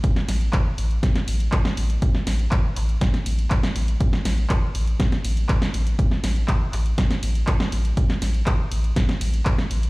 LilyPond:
<<
  \new Staff \with { instrumentName = "Sub bass" } { \clef bass \time 4/4 \key c \major \tempo 4 = 121 r8 a,,8 r8 a,,8 r8 a,,8 r8 a,,8 | r8 a,,8 r8 a,,8 r8 a,,8 r8 a,,8 | r8 a,,8 r8 a,,8 r8 a,,8 r8 a,,8 | r8 a,,8 r8 a,,8 r8 a,,8 r8 a,,8 |
r8 a,,8 r8 a,,8 r8 a,,8 r8 a,,8 | }
  \new DrumStaff \with { instrumentName = "Drums" } \drummode { \time 4/4 <hh bd>16 sn16 <hho cymr sn>16 hh16 <hc hh bd>8 <hho cymr>16 hh16 <hh bd sn>16 <hh sn>16 <hho cymr>16 hh16 <hc hh bd>16 sn16 <hho cymr>16 hh16 | <hh bd>16 sn16 <hho cymr sn>16 hh16 <hc hh bd>8 <hc hho cymr>16 hh16 <hh bd sn>16 <hh sn>16 <hho cymr>16 hh16 <hc hh bd>16 <hh sn>16 <hho cymr>16 hh16 | <hh bd>16 sn16 <hho cymr sn>16 hh16 <hc hh bd>8 <hho cymr>16 hh16 <hh bd sn>16 <hh sn>16 <hho cymr>16 hh16 <hc hh bd>16 sn16 <hho cymr>16 hh16 | <hh bd>16 sn16 <hho cymr sn>16 hh16 <hc hh bd>8 <hc hho cymr>16 hh16 <hh bd sn>16 <hh sn>16 <hho cymr>16 hh16 <hc hh bd>16 sn16 <hho cymr>16 hh16 |
<hh bd>16 sn16 <hho cymr sn>16 hh16 <hc hh bd>8 <hho cymr>16 hh16 <hh bd sn>16 <hh sn>16 <hho cymr>16 hh16 <hc hh bd>16 sn16 <hho cymr>16 hh16 | }
>>